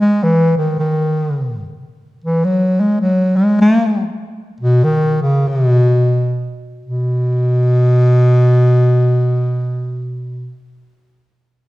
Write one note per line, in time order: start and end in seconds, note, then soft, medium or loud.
0.01 0.25 G#3 medium
0.23 0.56 E3 loud
0.57 0.76 D#3 medium
0.79 1.63 D#3 medium
2.24 2.46 E3 medium
2.45 2.82 F#3 medium
2.80 3.00 G#3 medium
3.01 3.38 F#3 medium
3.36 3.58 G#3 medium
3.61 4.04 A#3 loud
4.60 4.85 B2 medium
4.84 5.21 D#3 loud
5.22 5.49 C#3 medium
5.47 5.67 C3 medium
5.67 6.57 B2 medium
6.86 10.56 B2 loud